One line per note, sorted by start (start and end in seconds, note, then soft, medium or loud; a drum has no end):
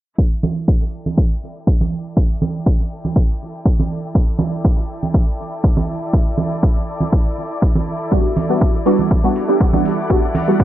0.18 10.64 E4 medium
0.18 kick loud
0.43 10.64 A4 medium
0.43 10.64 D5 medium
0.43 high conga medium
0.63 8.12 G5 medium
0.68 kick loud
1.06 high conga medium
1.18 kick loud
1.67 kick loud
1.81 high conga medium
2.17 kick loud
2.42 high conga medium
2.66 kick loud
3.05 high conga medium
3.16 kick loud
3.66 kick loud
3.80 high conga medium
4.15 kick loud
4.39 high conga medium
4.65 kick loud
5.03 high conga medium
5.14 kick loud
5.64 kick loud
5.77 high conga loud
6.13 kick loud
6.38 high conga medium
6.63 kick loud
7.00 high conga medium
7.13 kick loud
7.62 kick loud
7.75 high conga medium
8.11 8.24 G3 medium
8.11 8.24 B3 medium
8.11 8.25 D4 medium
8.11 8.25 F#4 loud
8.11 kick loud
8.37 open hi-hat loud
8.37 high conga medium
8.49 8.61 G3 medium
8.49 8.61 B3 medium
8.49 8.61 D4 medium
8.49 8.61 F#4 medium
8.61 kick loud
8.86 9.21 G3 medium
8.86 9.21 B3 medium
8.86 9.21 D4 medium
8.86 9.21 F#4 loud
8.86 open hi-hat loud
8.99 high conga medium
9.11 kick loud
9.24 9.46 G3 medium
9.24 9.46 B3 medium
9.24 9.46 D4 medium
9.24 9.46 F#4 medium
9.24 10.64 F#5 medium
9.36 open hi-hat loud
9.48 9.70 G3 medium
9.48 9.71 B3 medium
9.48 9.71 D4 medium
9.48 9.71 G4 medium
9.61 kick loud
9.73 10.07 G3 medium
9.73 10.07 B3 medium
9.73 10.07 D4 medium
9.73 10.08 F#4 medium
9.73 high conga medium
9.85 open hi-hat loud
10.10 10.23 G3 medium
10.10 10.23 B3 medium
10.10 10.23 D4 medium
10.10 10.23 F#4 loud
10.10 kick loud
10.35 open hi-hat loud
10.35 high conga medium
10.48 10.59 G3 medium
10.48 10.59 B3 medium
10.48 10.59 D4 medium
10.48 10.60 F#4 medium
10.60 kick medium